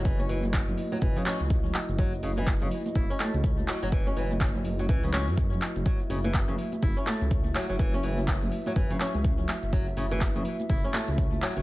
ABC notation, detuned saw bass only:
X:1
M:4/4
L:1/16
Q:"Swing 16ths" 1/4=124
K:F#dor
V:1 name="Detuned saw bass" clef=bass
F,,,2 F,,,3 F,,, z2 F,,, z2 C,,3 z F,,,- | F,,,2 F,,,3 F,,, z2 F,,, z2 C,,3 z F,,,- | F,,,2 F,,,3 F,,,3 C,,3 F,,3 z F,,, | z2 F,,,3 F,,, z2 F,,, z2 C,,3 z F,,,- |
F,,,2 F,,,3 F,,, z2 F,,, z2 C,,3 z F,,,- | F,,,2 F,,,3 F,,, z2 F,,, z2 C,,3 z F,,, |]